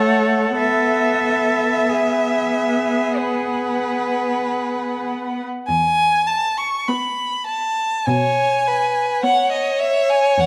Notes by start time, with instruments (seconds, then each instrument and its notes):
Already playing: viola A3, cello A4, violin C#5 F#5
0.58 viola B3, cello A4, violin E5
1.89 cello G#4
3.17 violin B4 F#5
5.68 cello E2, violin G#5
6.27 violin A5
6.57 violin C#6
6.88 viola B3, violin B5
7.47 violin A5
8.06 cello B2, violin C#5 G#5
8.67 violin B4
9.23 viola B3, violin C#5 F#5
9.52 violin D#5
9.80 violin E5
10.10 violin G#5
10.38 cello E2, violin F#5